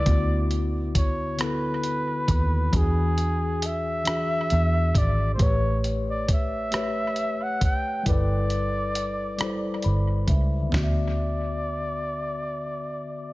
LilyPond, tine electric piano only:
\new Staff \with { instrumentName = "Tine electric piano" } { \time 6/8 \key d \major \tempo 4. = 45 << { r2. | r2. | r2. | r2 b''8 e''8 |
r2. | } \\ { <d b e' fis'>4. <d b e' a'>4. | <e d' fis' gis'>4. <e d' fis' gis'>4. | <a g' b' cis''>4. <a g' b' cis''>4. | <g e' a' b'>4. <g e' a' c'' d''>4. |
<d b fis' e''>2. | } >> }